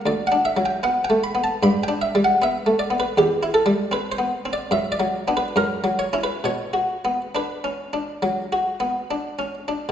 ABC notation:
X:1
M:4/4
L:1/16
Q:1/4=73
K:Bm
V:1 name="Harpsichord"
d f e g f g b a b g e f e2 d B | G2 A2 B =c2 d e d2 B ^A2 ^c B | c4 B8- B2 z2 |]
V:2 name="Harpsichord"
(3D,,2 D2 F,2 (3B,2 A,2 B,2 (3G,,2 D2 G,2 (3B,2 A,2 B,2 | (3E,,2 E2 G,2 (3=C2 B,2 C2 (3F,,2 F,2 [B,D]2 (3F,,2 F,2 [^CE]2 | (3B,,2 F2 B,2 (3D2 C2 D2 (3F,2 F2 B,2 (3D2 C2 D2 |]